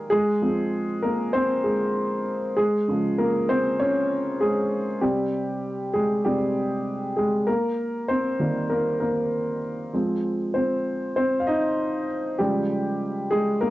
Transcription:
upright piano
Already playing: G#3 A#3 G#4 A#4
0.10 G#3 G#4
0.42 F3 G#3 C4
1.02 A#3 A#4
1.33 C4 C5
1.64 G#3 G#4
2.57 G#3 G#4
2.88 C#3 F3 G#3
3.18 A#3 A#4
3.49 C4 C5
3.80 C#4 C#5
4.40 G#3 G#4
5.01 C3 G3 C4 G4
5.94 G#3 G#4
6.25 C3 G3 C4 G4
7.16 G#3 G#4
7.47 A#3 A#4
8.08 C4 C5
8.39 D#3 G3 A#3
8.70 A#3 A#4
9.00 A#3 A#4
9.93 F3 G#3 C4
10.54 C4 C5
11.16 C4 C5
11.40 F5
11.47 D#4 D#5
12.39 C#3 F3 G3 G#3 G4
13.31 G#3 G#4
13.61 A#3 A#4

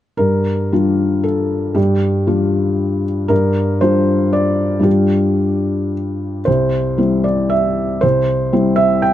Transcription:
felt piano
0.17 G2 A#4
0.73 G3 D4 F4
1.24 A4
1.75 G2 G4
2.27 G3 D4 F4
3.28 G2 A#4
3.81 G3 D4 F4 C5
4.33 D5
4.79 G2 G3 D4 F4 G4
6.45 C2 C5
6.98 G3 C4 E4
7.24 D5
7.50 E5
8.01 C2 C5
8.53 G3 C4 E4
8.76 E5
9.02 G5

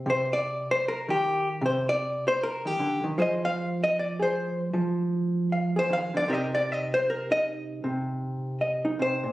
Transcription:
hollow-body jazz guitar
Already playing: C4
0.06 C3 C5
0.33 D5
0.71 C5
0.88 A#4
1.08 D#3 G4
1.61 C3
1.66 C5
1.89 D5
2.28 C5
2.43 A#4
2.65 D#3 G4
2.79 D3
3.04 D#3
3.18 F3 G#4 C5 D#5
3.45 F5
3.84 D#5
3.99 D5
4.20 G#4 C5
4.73 F3
5.52 F5
5.76 G#4 C5
5.90 D#3 F5
6.14 D3 D5
6.28 C3 D#4 G4 A#4
6.33 D#5
6.55 D5
6.72 D#5
6.94 C5
7.10 A#4
7.31 D#4 D#5
7.84 C3
8.61 D#5
8.85 D#4
8.99 C3 C5
9.24 A#2

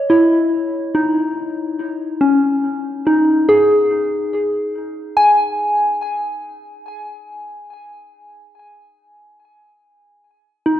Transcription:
synth bell
Already playing: C#5 D#5
0.10 E4
0.94 D#4
2.21 C#4
3.06 D#4
3.48 G#4
5.17 G#5
10.66 D#4

